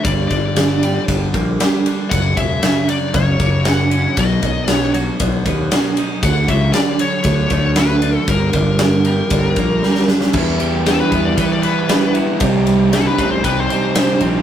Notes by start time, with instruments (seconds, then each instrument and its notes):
0.04 fingered electric bass G1, clean electric guitar G2, lead electric guitar D5, kick, ride
0.28 fingered electric bass G1, clean electric guitar D3, lead electric guitar D5, kick, ride
0.56 clean electric guitar D3, snare, ride
0.83 clean electric guitar G3, ride
1.08 fingered electric bass G1, clean electric guitar D3, kick, ride
1.34 fingered electric bass A#1, clean electric guitar A#3, kick, ride
1.60 clean electric guitar G3, snare, ride
1.86 clean electric guitar D4, ride
2.10 fingered electric bass F#1, clean electric guitar F#2, lead electric guitar F#5, kick, ride
2.37 fingered electric bass E1, clean electric guitar C#3, lead electric guitar E5, kick, ride
2.62 clean electric guitar C#3, snare, ride
2.88 clean electric guitar F#3, lead electric guitar D5, ride
3.13 fingered electric bass F#1, clean electric guitar C#3, lead electric guitar C#5, kick, ride
3.40 fingered electric bass F#1, clean electric guitar A#3, kick, ride
3.64 clean electric guitar F#3, lead electric guitar F#5, snare, ride
3.90 clean electric guitar C#4, ride
4.16 fingered electric bass B1, clean electric guitar B2, lead electric guitar D#5, kick, ride
4.42 fingered electric bass B1, clean electric guitar F#3, kick, ride
4.68 clean electric guitar B2, lead electric guitar C#5, snare, ride
4.94 clean electric guitar F#3, ride
5.20 fingered electric bass B1, clean electric guitar B2, kick, ride
5.46 fingered electric bass D#2, clean electric guitar B3, kick, ride
5.71 clean electric guitar F#3, snare, ride
5.97 clean electric guitar D#4, ride
6.23 fingered electric bass D2, clean electric guitar D3, lead electric guitar F#5, kick, ride
6.48 fingered electric bass C#2, clean electric guitar F#3, lead electric guitar E5, kick, ride
6.73 clean electric guitar D3, lead electric guitar D5, snare, ride
6.99 clean electric guitar F#3, lead electric guitar C#5, ride
7.24 fingered electric bass D2, clean electric guitar D3, kick, ride
7.50 fingered electric bass D2, clean electric guitar A3, kick, ride
7.76 clean electric guitar F#3, lead electric guitar B4, snare, ride
8.02 clean electric guitar D4, ride
8.28 fingered electric bass G1, clean electric guitar G2, lead electric guitar A#4, kick, ride
8.53 fingered electric bass G1, clean electric guitar D3, kick, ride
8.79 clean electric guitar D3, snare, ride
9.05 clean electric guitar G3, ride
9.30 fingered electric bass G1, clean electric guitar D3, kick, ride
9.56 fingered electric bass A#1, clean electric guitar A#3, kick, ride
9.83 clean electric guitar G3, snare
9.95 snare
10.08 clean electric guitar D4, snare
10.21 snare
10.33 fingered electric bass E2, overdriven electric guitar E3 G3 B3 E4, clean electric guitar E3, kick, crash
10.60 clean electric guitar G3, ride
10.85 overdriven electric guitar E3 G3 B3 E4, clean electric guitar G3, lead electric guitar A4, snare, ride
11.01 lead electric guitar B4
11.10 fingered electric bass E2, overdriven electric guitar G3 B3 E4, clean electric guitar B3, kick, ride
11.25 lead electric guitar D5
11.37 overdriven electric guitar E3 G3 B3 E4, fingered electric bass E3, clean electric guitar G3, lead electric guitar B4, kick, ride
11.52 lead electric guitar D5
11.62 clean electric guitar E3, overdriven electric guitar G3 B3 E4, lead electric guitar B4, ride
11.89 clean electric guitar G3, snare, ride
12.14 overdriven electric guitar G3 B3 E4, clean electric guitar B3, ride
12.40 fingered electric bass C2, overdriven electric guitar C3 G3 C4 D#4, clean electric guitar C3, kick, ride
12.67 clean electric guitar G3, ride
12.92 overdriven electric guitar C3 G3 C4 D#4, clean electric guitar G3, lead electric guitar A4, snare, ride
13.06 lead electric guitar B4
13.17 fingered electric bass A1, overdriven electric guitar G3 C4 D#4, clean electric guitar C4, kick, ride
13.31 lead electric guitar C5
13.44 fingered electric bass C2, overdriven electric guitar C3 G3 C4 D#4, clean electric guitar G3, lead electric guitar B4, kick, ride
13.59 lead electric guitar C5
13.70 clean electric guitar C3, overdriven electric guitar G3 C4 D#4, lead electric guitar C5, ride
13.95 clean electric guitar G3, snare, ride
14.20 fingered electric bass A#1, overdriven electric guitar G3 C4 D#4, clean electric guitar C4, ride